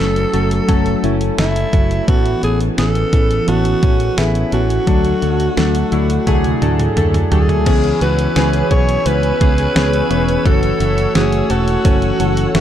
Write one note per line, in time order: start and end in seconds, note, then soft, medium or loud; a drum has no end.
0.00 0.24 F#1 medium
0.00 0.33 F#3 medium
0.00 0.33 A3 medium
0.00 0.68 A3 medium
0.00 0.34 C#4 medium
0.00 1.03 C#4 medium
0.00 1.04 E4 medium
0.00 0.34 A4 medium
0.00 1.12 A4 loud
0.00 2.10 B4 medium
0.16 closed hi-hat soft
0.33 0.59 F#1 medium
0.33 0.63 F#3 medium
0.33 1.72 F#3 medium
0.33 0.63 A3 medium
0.33 0.64 C#4 medium
0.33 0.64 A4 medium
0.33 closed hi-hat medium
0.51 closed hi-hat medium
0.68 0.94 F#1 medium
0.68 0.98 F#3 loud
0.68 0.98 A3 loud
0.68 1.38 A3 medium
0.68 0.98 C#4 loud
0.68 0.99 A4 loud
0.68 kick medium
0.68 closed hi-hat medium
0.86 closed hi-hat soft
1.03 1.29 F#1 medium
1.03 1.33 F#3 medium
1.03 1.33 A3 medium
1.03 2.81 C#4 medium
1.03 1.34 C#4 medium
1.03 1.34 E4 medium
1.03 closed hi-hat medium
1.21 closed hi-hat soft
1.38 1.63 F#1 loud
1.38 1.68 F#3 medium
1.38 1.68 A3 medium
1.38 2.77 A3 medium
1.38 1.68 C#4 medium
1.38 2.05 E4 medium
1.38 1.69 A4 medium
1.38 snare loud
1.38 closed hi-hat medium
1.56 closed hi-hat soft
1.73 1.98 F#1 medium
1.73 2.03 F#3 medium
1.73 2.08 F#3 medium
1.73 2.03 A3 medium
1.73 2.03 C#4 medium
1.73 2.03 A4 medium
1.73 kick medium
1.73 closed hi-hat medium
1.91 closed hi-hat soft
2.07 2.33 A1 medium
2.07 2.38 E3 medium
2.07 2.42 E3 medium
2.07 2.38 B3 medium
2.07 2.38 C#4 medium
2.07 2.41 F#4 medium
2.07 2.38 A4 medium
2.07 kick loud
2.07 closed hi-hat medium
2.26 closed hi-hat soft
2.42 2.68 A1 medium
2.42 2.73 E3 medium
2.42 3.12 E3 medium
2.42 2.73 B3 medium
2.42 2.73 C#4 medium
2.42 2.60 G#4 medium
2.42 2.73 A4 medium
2.42 closed hi-hat medium
2.61 closed hi-hat medium
2.78 3.03 A1 loud
2.78 3.08 E3 medium
2.78 3.47 B3 medium
2.78 3.08 B3 medium
2.78 3.08 C#4 medium
2.78 3.08 G#4 medium
2.78 3.44 A4 medium
2.78 snare medium
2.78 closed hi-hat medium
2.95 closed hi-hat soft
3.13 3.38 A1 medium
3.13 3.43 E3 medium
3.13 4.52 E3 medium
3.13 3.43 B3 medium
3.13 3.43 C#4 medium
3.13 3.43 A4 medium
3.13 kick medium
3.13 closed hi-hat medium
3.31 closed hi-hat medium
3.47 3.73 A1 medium
3.47 3.77 E3 medium
3.47 3.77 B3 medium
3.47 4.16 B3 medium
3.47 3.78 C#4 medium
3.47 4.20 F#4 medium
3.47 3.78 A4 loud
3.47 closed hi-hat medium
3.65 closed hi-hat soft
3.82 4.08 A1 medium
3.82 4.12 E3 medium
3.82 4.13 B3 medium
3.82 4.94 C#4 medium
3.82 4.13 C#4 medium
3.82 4.13 A4 medium
3.82 kick medium
3.82 closed hi-hat medium
4.00 closed hi-hat soft
4.17 4.43 A1 loud
4.17 4.47 E3 medium
4.17 4.47 B3 medium
4.17 4.94 B3 medium
4.17 4.48 C#4 medium
4.17 4.53 E4 medium
4.17 4.48 G#4 medium
4.17 snare loud
4.17 closed hi-hat medium
4.35 closed hi-hat medium
4.52 4.78 A1 medium
4.52 4.82 E3 medium
4.52 4.87 E3 medium
4.52 4.82 B3 medium
4.52 4.82 C#4 medium
4.52 6.93 F#4 medium
4.52 4.83 A4 medium
4.52 closed hi-hat medium
4.70 closed hi-hat soft
4.87 5.13 D2 loud
4.87 5.17 F#3 medium
4.87 5.22 F#3 medium
4.87 5.17 A3 medium
4.87 5.17 D4 medium
4.87 5.17 A4 loud
4.87 kick loud
4.87 closed hi-hat medium
5.05 closed hi-hat soft
5.22 5.47 D2 medium
5.22 5.52 F#3 medium
5.22 5.91 F#3 medium
5.22 5.52 A3 medium
5.22 5.52 D4 medium
5.22 5.52 A4 medium
5.22 closed hi-hat medium
5.40 closed hi-hat medium
5.56 5.82 D2 medium
5.56 5.87 F#3 medium
5.56 5.87 A3 medium
5.56 6.26 A3 medium
5.56 5.87 D4 medium
5.56 5.87 A4 medium
5.56 snare medium
5.56 closed hi-hat medium
5.75 closed hi-hat medium
5.92 6.17 D2 medium
5.92 6.22 F#3 medium
5.92 7.31 F#3 medium
5.92 6.22 A3 medium
5.92 6.22 D4 medium
5.92 6.22 E4 medium
5.92 closed hi-hat medium
6.10 closed hi-hat medium
6.27 6.52 D2 loud
6.27 6.57 F#3 loud
6.27 6.57 A3 loud
6.27 6.96 A3 medium
6.27 6.57 D4 loud
6.27 6.57 G#4 loud
6.27 kick medium
6.27 closed hi-hat medium
6.27 high tom soft
6.44 closed hi-hat soft
6.44 high tom soft
6.61 6.87 D2 medium
6.61 6.91 F#3 medium
6.61 6.92 A3 medium
6.61 7.73 D4 medium
6.61 6.92 D4 medium
6.61 6.92 A4 medium
6.61 closed hi-hat medium
6.61 mid tom medium
6.79 closed hi-hat soft
6.79 mid tom medium
6.96 7.22 D2 loud
6.96 7.26 F#3 medium
6.96 7.26 A3 medium
6.96 7.74 A3 medium
6.96 7.27 D4 medium
6.96 7.27 A4 medium
6.96 closed hi-hat medium
6.96 mid tom medium
7.14 closed hi-hat medium
7.14 mid tom medium
7.31 7.57 D2 medium
7.31 7.61 F#3 medium
7.31 7.67 F#3 medium
7.31 7.61 A3 medium
7.31 7.62 D4 medium
7.31 7.97 G#4 medium
7.31 7.62 A4 medium
7.31 closed hi-hat medium
7.31 floor tom medium
7.49 closed hi-hat soft
7.49 floor tom medium
7.66 7.92 C#2 medium
7.66 7.96 E3 medium
7.66 10.45 E3 medium
7.66 7.96 B3 medium
7.66 7.97 C#4 medium
7.66 7.97 G#4 loud
7.66 8.70 G#4 medium
7.66 12.60 C#5 medium
7.66 10.43 G#5 medium
7.66 10.43 B5 medium
7.66 12.60 E6 medium
7.66 kick loud
7.66 closed hi-hat medium
7.66 crash medium
7.66 cowbell medium
7.84 closed hi-hat soft
8.01 8.26 C#2 medium
8.01 8.31 E3 medium
8.01 8.31 B3 medium
8.01 10.53 B3 medium
8.01 8.31 C#4 medium
8.01 8.32 F#4 medium
8.01 8.73 B4 medium
8.01 closed hi-hat medium
8.19 closed hi-hat medium
8.36 8.61 C#2 medium
8.36 8.66 E3 medium
8.36 8.66 B3 medium
8.36 9.06 C#4 medium
8.36 8.66 C#4 medium
8.36 8.66 G#4 loud
8.36 snare loud
8.36 closed hi-hat medium
8.36 cowbell medium
8.53 closed hi-hat medium
8.71 8.96 B1 medium
8.71 9.01 E3 medium
8.71 9.01 B3 medium
8.71 9.01 C#4 medium
8.71 9.40 G#4 medium
8.71 9.01 G#4 medium
8.71 9.08 C#5 medium
8.71 kick medium
8.71 closed hi-hat medium
8.71 cowbell medium
8.89 closed hi-hat medium
9.05 9.31 C#2 loud
9.05 9.36 E3 medium
9.05 9.36 B3 medium
9.05 9.36 C#4 medium
9.05 9.76 C#4 medium
9.05 9.36 B4 medium
9.05 10.46 B4 loud
9.05 closed hi-hat loud
9.05 cowbell medium
9.23 closed hi-hat soft
9.40 9.66 C#2 medium
9.40 9.70 E3 medium
9.40 9.71 B3 medium
9.40 9.71 C#4 medium
9.40 10.09 G#4 medium
9.40 9.71 G#4 medium
9.40 kick medium
9.40 closed hi-hat medium
9.58 closed hi-hat soft
9.75 10.01 C#2 medium
9.75 10.05 E3 medium
9.75 10.05 B3 medium
9.75 10.06 C#4 medium
9.75 11.15 C#4 medium
9.75 10.06 G#4 loud
9.75 snare loud
9.75 closed hi-hat medium
9.75 cowbell medium
9.93 closed hi-hat medium
10.10 10.36 E1 medium
10.10 10.40 E3 medium
10.10 10.40 B3 medium
10.10 10.41 C#4 medium
10.10 10.45 G#4 medium
10.10 10.41 B4 medium
10.10 closed hi-hat medium
10.29 closed hi-hat soft
10.45 10.71 F#1 medium
10.45 10.75 E3 medium
10.45 12.60 E3 medium
10.45 10.75 A3 medium
10.45 10.76 C#4 medium
10.45 10.76 F#4 loud
10.45 11.50 A4 medium
10.45 11.12 A4 medium
10.45 12.60 F#5 medium
10.45 kick loud
10.45 closed hi-hat medium
10.45 cowbell medium
10.63 closed hi-hat soft
10.80 11.05 F#1 loud
10.80 11.10 E3 medium
10.80 11.10 A3 medium
10.80 12.60 A3 medium
10.80 11.10 C#4 medium
10.80 11.11 F#4 medium
10.80 closed hi-hat medium
10.98 closed hi-hat medium
11.15 11.40 F#1 medium
11.15 11.45 E3 medium
11.15 11.45 A3 medium
11.15 11.84 C#4 medium
11.15 11.45 C#4 medium
11.15 11.46 F#4 loud
11.15 11.52 G#4 medium
11.15 snare medium
11.15 closed hi-hat medium
11.15 cowbell medium
11.32 closed hi-hat soft
11.50 11.75 E1 medium
11.50 11.80 E3 medium
11.50 11.80 A3 medium
11.50 11.80 C#4 medium
11.50 12.60 F#4 medium
11.50 11.80 F#4 medium
11.50 12.19 A4 medium
11.50 closed hi-hat medium
11.50 cowbell medium
11.68 closed hi-hat medium
11.84 12.10 F#1 loud
11.84 12.14 E3 medium
11.84 12.15 A3 medium
11.84 12.54 C#4 medium
11.84 12.15 C#4 medium
11.84 12.15 A4 medium
11.84 kick medium
11.84 closed hi-hat loud
11.84 cowbell medium
12.02 closed hi-hat soft
12.19 12.45 F#1 medium
12.19 12.50 E3 medium
12.19 12.50 A3 medium
12.19 12.50 C#4 medium
12.19 12.50 F#4 medium
12.19 12.60 A4 medium
12.19 closed hi-hat medium
12.37 closed hi-hat medium
12.54 12.60 F#1 loud
12.54 12.60 E3 loud
12.54 12.60 A3 loud
12.54 12.60 C#4 medium
12.54 12.60 C#4 loud
12.54 12.60 F#4 loud
12.54 snare loud
12.54 closed hi-hat medium
12.54 cowbell medium